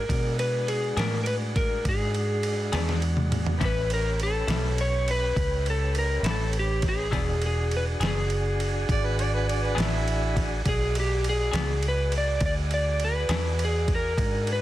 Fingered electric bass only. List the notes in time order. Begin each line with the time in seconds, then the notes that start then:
0.09 B2
0.97 A2
1.85 G#2
2.73 E2
3.61 A1
4.48 B1
5.36 C#2
6.23 A1
7.12 E1
8.00 F#1
8.89 G#1
9.78 A1
10.66 B1
11.54 C#2
12.41 D2
13.29 E2
14.18 G#2